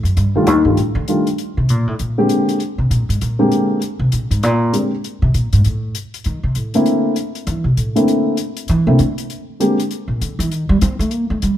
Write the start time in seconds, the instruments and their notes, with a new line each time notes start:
0.03 upright bass F#2, closed hi-hat
0.17 upright bass G2, closed hi-hat
0.35 upright bass C2, grand piano D#3 G3 A3 D4 F4
0.47 upright bass D#2, closed hi-hat
0.65 upright bass G2, grand piano D#3 G3 A3 D4 F4
0.77 upright bass A2, closed hi-hat
0.95 upright bass D3
1.08 grand piano D#3 G3 A3 D4 F4, closed hi-hat
1.27 closed hi-hat
1.38 closed hi-hat
1.57 upright bass C3
1.69 upright bass A#2, closed hi-hat
1.87 upright bass A2
1.99 upright bass A#2, closed hi-hat
2.18 grand piano D3 G#3 A#3 C4 G4
2.29 closed hi-hat
2.49 closed hi-hat
2.60 closed hi-hat
2.78 upright bass C3
2.90 upright bass A#2, closed hi-hat
3.09 upright bass G#2, closed hi-hat
3.21 upright bass A#2, closed hi-hat
3.39 grand piano D3 G#3 A#3 C4 G4
3.52 closed hi-hat
3.82 closed hi-hat
3.99 upright bass C3
4.12 upright bass A#2, closed hi-hat
4.31 upright bass G#2, closed hi-hat
4.43 upright bass A#2, closed hi-hat
4.73 grand piano D3 G#3 A#3 C4 G4, closed hi-hat
5.04 closed hi-hat
5.22 upright bass C3
5.34 upright bass A#2, closed hi-hat
5.53 upright bass G#2, closed hi-hat
5.64 upright bass A2, closed hi-hat
5.95 closed hi-hat
6.14 closed hi-hat
6.24 upright bass D#3, closed hi-hat
6.43 upright bass C3
6.55 upright bass A2, closed hi-hat
6.74 grand piano D3 A3 A#3 C4 E4, closed hi-hat
6.86 closed hi-hat
7.16 closed hi-hat
7.35 closed hi-hat
7.47 upright bass E3, closed hi-hat
7.64 upright bass C3
7.77 upright bass A2, closed hi-hat
7.96 grand piano D3 A3 A#3 C4 E4, closed hi-hat
8.08 closed hi-hat
8.37 closed hi-hat
8.57 closed hi-hat
8.68 upright bass E3, closed hi-hat
8.87 upright bass C3, grand piano D3 A3 A#3 C4 E4
8.99 upright bass D3, closed hi-hat
9.18 closed hi-hat
9.30 closed hi-hat
9.60 grand piano D3 G#3 A#3 C4 G4, closed hi-hat
9.80 closed hi-hat
9.91 closed hi-hat
10.08 upright bass A#2
10.21 upright bass D3, closed hi-hat
10.39 upright bass E3, closed hi-hat
10.50 upright bass D#3, closed hi-hat
10.69 upright bass G3
10.81 upright bass C4, closed hi-hat
10.99 upright bass A3, closed hi-hat
11.11 upright bass A#3, closed hi-hat
11.30 upright bass A3
11.42 upright bass G3, closed hi-hat